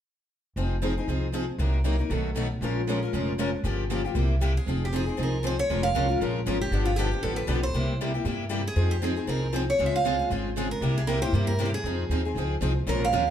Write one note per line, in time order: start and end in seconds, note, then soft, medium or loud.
0.56 0.97 F1 medium
0.56 0.75 F3 medium
0.56 0.75 C4 medium
0.56 0.75 D#4 medium
0.56 0.76 G#4 medium
0.82 0.92 F3 medium
0.82 0.93 C4 medium
0.82 0.93 D#4 medium
0.82 0.93 G#4 medium
0.98 1.08 C4 soft
0.98 1.09 D#4 soft
0.98 1.08 G#4 medium
1.07 1.49 C2 medium
1.07 1.26 F3 medium
1.07 1.27 C4 medium
1.07 1.27 D#4 medium
1.07 1.27 G#4 medium
1.33 1.44 F3 medium
1.33 1.44 C4 medium
1.33 1.44 D#4 medium
1.33 1.44 G#4 medium
1.58 2.00 C2 medium
1.58 1.77 C3 medium
1.58 1.78 F#3 medium
1.58 1.78 A#3 medium
1.58 1.78 D#4 medium
1.58 1.78 A#4 medium
1.84 1.95 C3 medium
1.84 1.95 F#3 medium
1.84 1.95 A#3 medium
1.84 1.95 D#4 medium
1.84 1.96 A#4 medium
1.99 2.10 A#3 soft
1.99 2.10 D#4 soft
1.99 2.10 A#4 soft
2.10 2.51 B1 medium
2.10 2.29 B2 medium
2.10 2.29 D#3 medium
2.10 2.29 F#3 medium
2.10 2.29 A3 medium
2.10 2.29 B3 medium
2.10 2.29 D#4 medium
2.10 2.30 F#4 medium
2.10 2.29 A4 medium
2.35 2.46 B2 medium
2.35 2.46 D#3 medium
2.35 2.46 F#3 medium
2.35 2.47 A3 medium
2.35 2.46 B3 medium
2.35 2.47 D#4 medium
2.35 2.47 F#4 medium
2.35 2.46 A4 medium
2.61 3.02 A#1 medium
2.61 2.80 F3 medium
2.61 2.81 G#3 medium
2.61 2.81 C#4 medium
2.61 2.81 F4 medium
2.61 2.81 A#4 medium
2.89 2.98 F3 medium
2.89 2.98 G#3 medium
2.89 2.99 C#4 medium
2.89 2.99 F4 medium
2.89 2.99 A#4 medium
3.03 3.13 C#4 soft
3.03 3.14 F4 soft
3.03 3.13 A#4 medium
3.13 3.54 F1 medium
3.13 3.32 F3 medium
3.13 3.32 G#3 medium
3.13 3.32 C#4 medium
3.13 3.32 F4 medium
3.13 3.32 A#4 medium
3.39 3.49 F3 medium
3.39 3.49 G#3 medium
3.39 3.49 C#4 medium
3.39 3.49 F4 medium
3.39 3.50 A#4 medium
3.64 4.05 G1 medium
3.64 3.83 C#3 medium
3.64 3.83 F3 medium
3.64 3.83 A#3 medium
3.64 3.83 F4 medium
3.64 3.83 G4 medium
3.90 4.00 C#3 medium
3.90 4.01 F3 medium
3.90 4.01 A#3 medium
3.90 4.01 F4 medium
3.90 4.01 G4 medium
4.05 4.15 A#3 soft
4.05 4.16 F4 soft
4.05 4.15 G4 medium
4.15 4.56 C2 medium
4.15 4.33 C3 medium
4.15 4.34 G3 medium
4.15 4.34 A#3 medium
4.15 4.34 E4 medium
4.15 4.34 G4 medium
4.41 4.52 C3 medium
4.41 4.52 G3 medium
4.41 4.52 A#3 medium
4.41 4.52 E4 medium
4.41 4.52 G4 medium
4.57 4.83 G#4 medium
4.67 5.08 F1 medium
4.67 4.86 F3 medium
4.67 4.86 C4 medium
4.67 4.86 D#4 medium
4.67 4.86 G#4 medium
4.85 4.94 G4 medium
4.93 5.03 F3 medium
4.93 5.03 C4 medium
4.93 5.04 D#4 medium
4.93 5.04 G#4 medium
4.93 5.18 G#4 medium
5.06 5.16 C4 soft
5.06 5.17 D#4 soft
5.06 5.17 G#4 medium
5.17 5.59 C2 medium
5.17 5.36 F3 medium
5.17 5.36 C4 medium
5.17 5.36 D#4 medium
5.17 5.37 G#4 medium
5.23 5.46 A#4 medium
5.43 5.54 F3 medium
5.43 5.54 C4 medium
5.43 5.54 D#4 loud
5.43 5.54 G#4 medium
5.43 5.59 C5 medium
5.59 5.83 C#5 medium
5.70 5.90 F1 medium
5.70 5.88 F3 medium
5.70 5.88 G#3 medium
5.70 5.88 C#4 medium
5.70 5.88 F4 medium
5.70 5.89 A#4 medium
5.83 6.18 F5 medium
5.95 6.17 C2 medium
5.95 6.05 F3 medium
5.95 6.05 G#3 medium
5.95 6.06 C#4 medium
5.95 6.06 F4 medium
5.95 6.06 A#4 medium
6.08 6.21 C#4 soft
6.08 6.20 F4 soft
6.08 6.20 A#4 medium
6.21 6.42 A#1 medium
6.21 6.39 F3 medium
6.21 6.39 G#3 medium
6.21 6.39 C#4 medium
6.21 6.39 F4 medium
6.21 6.40 A#4 medium
6.46 6.68 G#1 medium
6.46 6.57 F3 medium
6.46 6.57 G#3 medium
6.46 6.57 C#4 medium
6.46 6.57 F4 medium
6.46 6.57 A#4 medium
6.61 6.85 G4 medium
6.71 7.12 G1 medium
6.71 6.90 D3 medium
6.71 6.91 F3 medium
6.71 6.91 B3 medium
6.71 6.91 D4 medium
6.71 6.91 G4 medium
6.85 6.96 F4 medium
6.96 7.08 D3 medium
6.96 7.08 F3 medium
6.96 7.08 B3 medium
6.96 7.09 D4 medium
6.96 7.23 G4 medium
6.96 7.09 G4 medium
7.12 7.22 B3 soft
7.12 7.22 G4 soft
7.23 7.45 A1 medium
7.23 7.41 D3 medium
7.23 7.41 F3 medium
7.23 7.41 B3 medium
7.23 7.41 D4 medium
7.23 7.42 G4 medium
7.23 7.36 A4 medium
7.36 7.63 B4 medium
7.47 7.70 B1 medium
7.47 7.58 D3 medium
7.47 7.58 F3 medium
7.47 7.58 B3 medium
7.47 7.58 D4 loud
7.47 7.59 G4 medium
7.63 7.97 C5 medium
7.73 8.15 C2 medium
7.73 7.92 C3 medium
7.73 7.92 G3 medium
7.73 7.93 A#3 medium
7.73 7.93 E4 medium
7.73 7.93 G4 medium
8.01 8.10 C3 medium
8.01 8.11 G3 medium
8.01 8.11 A#3 medium
8.01 8.11 E4 medium
8.01 8.11 G4 medium
8.14 8.24 A#3 soft
8.14 8.25 E4 soft
8.14 8.25 G4 medium
8.25 8.66 G2 medium
8.25 8.43 C3 medium
8.25 8.44 G3 medium
8.25 8.44 A#3 medium
8.25 8.44 E4 medium
8.25 8.44 G4 medium
8.49 8.60 C3 medium
8.49 8.60 G3 medium
8.49 8.61 A#3 medium
8.49 8.61 E4 medium
8.49 8.61 G4 medium
8.68 8.91 G#4 medium
8.76 9.17 F2 medium
8.76 8.94 F3 medium
8.76 8.95 C4 medium
8.76 8.95 D#4 medium
8.76 8.95 G#4 medium
8.91 9.01 G4 medium
9.02 9.12 F3 medium
9.02 9.12 C4 medium
9.02 9.13 D#4 medium
9.02 9.13 G#4 medium
9.02 9.29 G#4 medium
9.16 9.26 C4 soft
9.16 9.27 D#4 medium
9.16 9.27 G#4 soft
9.27 9.69 C2 medium
9.27 9.46 F3 medium
9.27 9.46 C4 medium
9.27 9.46 D#4 medium
9.27 9.47 G#4 medium
9.27 9.55 A#4 medium
9.53 9.63 F3 medium
9.53 9.63 C4 medium
9.53 9.64 D#4 medium
9.53 9.64 G#4 loud
9.53 9.61 C5 medium
9.70 9.86 C#5 medium
9.79 10.20 C#2 medium
9.79 9.97 C#3 medium
9.79 9.98 G#3 medium
9.79 9.97 C4 medium
9.79 9.98 F4 medium
9.79 9.98 G#4 medium
9.86 9.94 E5 medium
9.96 10.29 F5 medium
10.05 10.15 C#3 medium
10.05 10.15 G#3 medium
10.05 10.15 C4 medium
10.05 10.16 F4 medium
10.05 10.16 G#4 medium
10.19 10.30 C4 soft
10.19 10.31 F4 soft
10.19 10.30 G#4 medium
10.30 10.71 G#1 medium
10.30 10.49 C#3 medium
10.30 10.49 G#3 medium
10.30 10.49 C4 medium
10.30 10.49 F4 medium
10.30 10.49 G#4 medium
10.57 10.67 C#3 medium
10.57 10.67 G#3 medium
10.57 10.67 C4 medium
10.57 10.67 F4 medium
10.57 10.67 G#4 loud
10.71 10.95 A#4 medium
10.81 11.22 C2 medium
10.81 11.00 C3 medium
10.81 11.00 G3 medium
10.81 11.01 A#3 medium
10.81 11.01 E4 medium
10.81 11.01 G4 medium
10.98 11.08 G#4 medium
11.07 11.18 C3 medium
11.07 11.18 G3 medium
11.07 11.18 A#3 medium
11.07 11.18 E4 medium
11.07 11.19 G4 medium
11.07 11.21 A#4 medium
11.22 11.34 A#3 soft
11.22 11.33 E4 medium
11.22 11.32 G4 medium
11.22 11.47 C5 medium
11.33 11.74 G2 medium
11.33 11.51 C3 medium
11.33 11.52 G3 medium
11.33 11.52 A#3 medium
11.33 11.52 E4 medium
11.33 11.52 G4 medium
11.47 11.66 A#4 medium
11.59 11.69 C3 medium
11.59 11.69 G3 medium
11.59 11.69 A#3 medium
11.59 11.69 E4 medium
11.59 11.70 G4 loud
11.65 11.73 G4 medium
11.74 12.58 G#4 medium
11.84 12.04 F2 medium
11.84 12.03 F3 medium
11.84 12.03 C4 medium
11.84 12.03 D#4 medium
11.84 12.04 G#4 medium
12.09 12.31 D#2 medium
12.09 12.21 F3 medium
12.09 12.21 C4 medium
12.09 12.21 D#4 medium
12.09 12.21 G#4 medium
12.25 12.37 C4 soft
12.25 12.36 D#4 medium
12.25 12.36 G#4 soft
12.35 12.57 C#2 medium
12.35 12.55 F3 medium
12.35 12.55 C4 medium
12.35 12.55 D#4 medium
12.35 12.55 G#4 medium
12.61 12.83 C2 medium
12.61 12.72 F3 medium
12.61 12.72 C4 medium
12.61 12.72 D#4 medium
12.61 12.72 G#4 medium
12.87 13.12 A#1 medium
12.87 13.05 F3 medium
12.87 13.05 G#3 medium
12.87 13.05 C#4 medium
12.87 13.05 F4 medium
12.87 13.06 A#4 medium
12.87 13.01 A#4 medium
13.05 13.29 F5 loud
13.12 13.30 D#2 medium
13.12 13.23 F3 medium
13.12 13.23 G#3 medium
13.12 13.23 C#4 medium
13.12 13.23 F4 medium
13.12 13.23 A#4 medium
13.27 13.30 A#4 medium